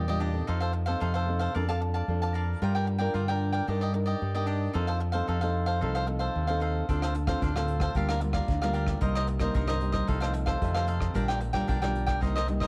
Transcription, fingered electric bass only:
0, 0, Header, 1, 2, 480
1, 0, Start_track
1, 0, Key_signature, -2, "major"
1, 0, Tempo, 533333
1, 439, Time_signature, 4, 2, 24, 8
1, 11404, End_track
2, 0, Start_track
2, 0, Title_t, "Fingered electric bass"
2, 0, Program_c, 0, 33
2, 0, Note_on_c, 0, 40, 84
2, 366, Note_off_c, 0, 40, 0
2, 437, Note_on_c, 0, 41, 92
2, 846, Note_off_c, 0, 41, 0
2, 912, Note_on_c, 0, 41, 84
2, 1323, Note_off_c, 0, 41, 0
2, 1399, Note_on_c, 0, 41, 90
2, 1807, Note_off_c, 0, 41, 0
2, 1872, Note_on_c, 0, 41, 92
2, 2283, Note_off_c, 0, 41, 0
2, 2356, Note_on_c, 0, 43, 105
2, 2765, Note_off_c, 0, 43, 0
2, 2829, Note_on_c, 0, 43, 82
2, 3241, Note_off_c, 0, 43, 0
2, 3314, Note_on_c, 0, 43, 100
2, 3724, Note_off_c, 0, 43, 0
2, 3797, Note_on_c, 0, 43, 85
2, 4206, Note_off_c, 0, 43, 0
2, 4275, Note_on_c, 0, 41, 96
2, 4685, Note_off_c, 0, 41, 0
2, 4755, Note_on_c, 0, 41, 82
2, 5238, Note_on_c, 0, 36, 97
2, 5252, Note_off_c, 0, 41, 0
2, 5647, Note_off_c, 0, 36, 0
2, 5722, Note_on_c, 0, 39, 83
2, 6129, Note_off_c, 0, 39, 0
2, 6200, Note_on_c, 0, 38, 86
2, 6608, Note_off_c, 0, 38, 0
2, 6680, Note_on_c, 0, 38, 90
2, 7088, Note_off_c, 0, 38, 0
2, 7156, Note_on_c, 0, 38, 100
2, 7566, Note_off_c, 0, 38, 0
2, 7637, Note_on_c, 0, 38, 90
2, 8046, Note_off_c, 0, 38, 0
2, 8113, Note_on_c, 0, 36, 97
2, 8524, Note_off_c, 0, 36, 0
2, 8593, Note_on_c, 0, 36, 87
2, 9004, Note_off_c, 0, 36, 0
2, 9076, Note_on_c, 0, 36, 108
2, 9486, Note_off_c, 0, 36, 0
2, 9556, Note_on_c, 0, 41, 94
2, 9966, Note_off_c, 0, 41, 0
2, 10039, Note_on_c, 0, 34, 98
2, 10448, Note_off_c, 0, 34, 0
2, 10519, Note_on_c, 0, 35, 99
2, 11003, Note_off_c, 0, 35, 0
2, 11003, Note_on_c, 0, 36, 106
2, 11404, Note_off_c, 0, 36, 0
2, 11404, End_track
0, 0, End_of_file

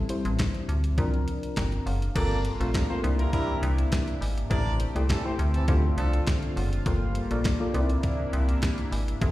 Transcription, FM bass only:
0, 0, Header, 1, 2, 480
1, 0, Start_track
1, 0, Tempo, 588235
1, 1758, Time_signature, 4, 2, 24, 8
1, 7601, End_track
2, 0, Start_track
2, 0, Title_t, "FM bass"
2, 0, Program_c, 0, 39
2, 206, Note_on_c, 0, 33, 105
2, 394, Note_off_c, 0, 33, 0
2, 560, Note_on_c, 0, 38, 86
2, 748, Note_off_c, 0, 38, 0
2, 798, Note_on_c, 0, 36, 107
2, 986, Note_off_c, 0, 36, 0
2, 1281, Note_on_c, 0, 31, 98
2, 1468, Note_off_c, 0, 31, 0
2, 1520, Note_on_c, 0, 30, 89
2, 1708, Note_off_c, 0, 30, 0
2, 1759, Note_on_c, 0, 31, 117
2, 2047, Note_off_c, 0, 31, 0
2, 2124, Note_on_c, 0, 34, 94
2, 2313, Note_off_c, 0, 34, 0
2, 2478, Note_on_c, 0, 36, 107
2, 2666, Note_off_c, 0, 36, 0
2, 2959, Note_on_c, 0, 36, 118
2, 3147, Note_off_c, 0, 36, 0
2, 3437, Note_on_c, 0, 32, 86
2, 3626, Note_off_c, 0, 32, 0
2, 3677, Note_on_c, 0, 33, 117
2, 3966, Note_off_c, 0, 33, 0
2, 4046, Note_on_c, 0, 36, 90
2, 4234, Note_off_c, 0, 36, 0
2, 4398, Note_on_c, 0, 38, 94
2, 4586, Note_off_c, 0, 38, 0
2, 4636, Note_on_c, 0, 38, 108
2, 4826, Note_off_c, 0, 38, 0
2, 4877, Note_on_c, 0, 36, 100
2, 5066, Note_off_c, 0, 36, 0
2, 5357, Note_on_c, 0, 30, 94
2, 5546, Note_off_c, 0, 30, 0
2, 5597, Note_on_c, 0, 31, 104
2, 5886, Note_off_c, 0, 31, 0
2, 5965, Note_on_c, 0, 34, 91
2, 6153, Note_off_c, 0, 34, 0
2, 6319, Note_on_c, 0, 36, 93
2, 6507, Note_off_c, 0, 36, 0
2, 6798, Note_on_c, 0, 36, 98
2, 6987, Note_off_c, 0, 36, 0
2, 7279, Note_on_c, 0, 32, 81
2, 7467, Note_off_c, 0, 32, 0
2, 7519, Note_on_c, 0, 33, 121
2, 7601, Note_off_c, 0, 33, 0
2, 7601, End_track
0, 0, End_of_file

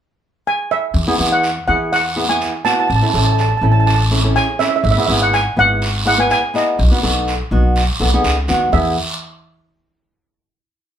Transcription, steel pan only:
0, 0, Header, 1, 2, 480
1, 0, Start_track
1, 0, Key_signature, 4, "major"
1, 0, Tempo, 486618
1, 933, Time_signature, 4, 2, 24, 8
1, 10836, End_track
2, 0, Start_track
2, 0, Title_t, "Steel pan"
2, 0, Program_c, 0, 114
2, 467, Note_on_c, 0, 80, 80
2, 703, Note_on_c, 0, 76, 77
2, 707, Note_off_c, 0, 80, 0
2, 1267, Note_off_c, 0, 76, 0
2, 1305, Note_on_c, 0, 78, 75
2, 1640, Note_off_c, 0, 78, 0
2, 1652, Note_on_c, 0, 78, 81
2, 1888, Note_off_c, 0, 78, 0
2, 1900, Note_on_c, 0, 78, 82
2, 2261, Note_on_c, 0, 80, 80
2, 2276, Note_off_c, 0, 78, 0
2, 2611, Note_on_c, 0, 81, 83
2, 2626, Note_off_c, 0, 80, 0
2, 2673, Note_off_c, 0, 81, 0
2, 2685, Note_on_c, 0, 81, 58
2, 2749, Note_off_c, 0, 81, 0
2, 2761, Note_on_c, 0, 81, 65
2, 2825, Note_off_c, 0, 81, 0
2, 2837, Note_on_c, 0, 81, 55
2, 2904, Note_off_c, 0, 81, 0
2, 2916, Note_on_c, 0, 81, 61
2, 2973, Note_off_c, 0, 81, 0
2, 2985, Note_on_c, 0, 81, 53
2, 3047, Note_off_c, 0, 81, 0
2, 3059, Note_on_c, 0, 81, 55
2, 3112, Note_off_c, 0, 81, 0
2, 3124, Note_on_c, 0, 81, 53
2, 3194, Note_off_c, 0, 81, 0
2, 3206, Note_on_c, 0, 81, 60
2, 3269, Note_off_c, 0, 81, 0
2, 3280, Note_on_c, 0, 81, 53
2, 3347, Note_off_c, 0, 81, 0
2, 3359, Note_on_c, 0, 81, 60
2, 3433, Note_off_c, 0, 81, 0
2, 3444, Note_on_c, 0, 81, 51
2, 3509, Note_off_c, 0, 81, 0
2, 3524, Note_on_c, 0, 81, 58
2, 3571, Note_off_c, 0, 81, 0
2, 3583, Note_on_c, 0, 81, 55
2, 3654, Note_off_c, 0, 81, 0
2, 3665, Note_on_c, 0, 81, 64
2, 3733, Note_off_c, 0, 81, 0
2, 3747, Note_on_c, 0, 81, 59
2, 3801, Note_off_c, 0, 81, 0
2, 3813, Note_on_c, 0, 81, 67
2, 3882, Note_off_c, 0, 81, 0
2, 3892, Note_on_c, 0, 81, 60
2, 3960, Note_off_c, 0, 81, 0
2, 4299, Note_on_c, 0, 80, 91
2, 4530, Note_on_c, 0, 76, 86
2, 4544, Note_off_c, 0, 80, 0
2, 4614, Note_off_c, 0, 76, 0
2, 4624, Note_on_c, 0, 76, 62
2, 4684, Note_off_c, 0, 76, 0
2, 4696, Note_on_c, 0, 76, 67
2, 4762, Note_off_c, 0, 76, 0
2, 4773, Note_on_c, 0, 76, 63
2, 4834, Note_off_c, 0, 76, 0
2, 4845, Note_on_c, 0, 76, 70
2, 4920, Note_off_c, 0, 76, 0
2, 4934, Note_on_c, 0, 76, 59
2, 4984, Note_off_c, 0, 76, 0
2, 4996, Note_on_c, 0, 76, 66
2, 5066, Note_off_c, 0, 76, 0
2, 5151, Note_on_c, 0, 78, 83
2, 5262, Note_off_c, 0, 78, 0
2, 5266, Note_on_c, 0, 80, 88
2, 5507, Note_off_c, 0, 80, 0
2, 5513, Note_on_c, 0, 78, 94
2, 5950, Note_off_c, 0, 78, 0
2, 5991, Note_on_c, 0, 78, 80
2, 6113, Note_off_c, 0, 78, 0
2, 6115, Note_on_c, 0, 80, 82
2, 6216, Note_off_c, 0, 80, 0
2, 6227, Note_on_c, 0, 80, 87
2, 6467, Note_off_c, 0, 80, 0
2, 6469, Note_on_c, 0, 75, 72
2, 8100, Note_off_c, 0, 75, 0
2, 8609, Note_on_c, 0, 76, 79
2, 8833, Note_off_c, 0, 76, 0
2, 10836, End_track
0, 0, End_of_file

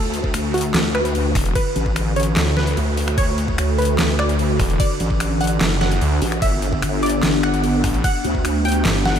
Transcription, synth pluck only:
0, 0, Header, 1, 2, 480
1, 0, Start_track
1, 0, Tempo, 405405
1, 1841, Time_signature, 4, 2, 24, 8
1, 10886, End_track
2, 0, Start_track
2, 0, Title_t, "Synth pluck"
2, 0, Program_c, 0, 84
2, 0, Note_on_c, 0, 69, 101
2, 547, Note_off_c, 0, 69, 0
2, 641, Note_on_c, 0, 66, 90
2, 919, Note_off_c, 0, 66, 0
2, 1120, Note_on_c, 0, 71, 93
2, 1746, Note_off_c, 0, 71, 0
2, 1841, Note_on_c, 0, 71, 100
2, 2467, Note_off_c, 0, 71, 0
2, 2562, Note_on_c, 0, 73, 91
2, 2839, Note_off_c, 0, 73, 0
2, 3042, Note_on_c, 0, 71, 95
2, 3667, Note_off_c, 0, 71, 0
2, 3762, Note_on_c, 0, 73, 102
2, 4387, Note_off_c, 0, 73, 0
2, 4481, Note_on_c, 0, 71, 89
2, 4759, Note_off_c, 0, 71, 0
2, 4962, Note_on_c, 0, 74, 93
2, 5587, Note_off_c, 0, 74, 0
2, 5680, Note_on_c, 0, 74, 96
2, 6306, Note_off_c, 0, 74, 0
2, 6401, Note_on_c, 0, 78, 93
2, 6679, Note_off_c, 0, 78, 0
2, 6881, Note_on_c, 0, 78, 92
2, 7507, Note_off_c, 0, 78, 0
2, 7602, Note_on_c, 0, 76, 100
2, 8227, Note_off_c, 0, 76, 0
2, 8321, Note_on_c, 0, 74, 91
2, 8599, Note_off_c, 0, 74, 0
2, 8801, Note_on_c, 0, 78, 95
2, 9427, Note_off_c, 0, 78, 0
2, 9522, Note_on_c, 0, 78, 95
2, 10147, Note_off_c, 0, 78, 0
2, 10242, Note_on_c, 0, 79, 88
2, 10519, Note_off_c, 0, 79, 0
2, 10722, Note_on_c, 0, 78, 95
2, 10886, Note_off_c, 0, 78, 0
2, 10886, End_track
0, 0, End_of_file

